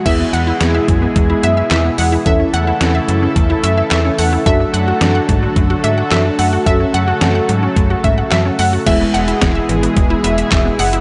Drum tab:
CC |x---------------|----------------|----------------|----------------|
HH |x-x-x-x-x-x-x-o-|x-x-x-x-x-x-x-o-|x-x-x-x-x-x-x-o-|x-x-x-x-x-x-x-o-|
CP |------------x---|------------x---|------------x---|------------x---|
SD |----o-------o---|----o-------o---|----o-------o---|----o-------o---|
BD |o-----o-o-------|o-------o-------|o-----o-o-------|o-------o-o-----|

CC |x---------------|
HH |x-xxx-xxx-xxx-ox|
CP |------------x---|
SD |----o-------o---|
BD |o---o---o---o---|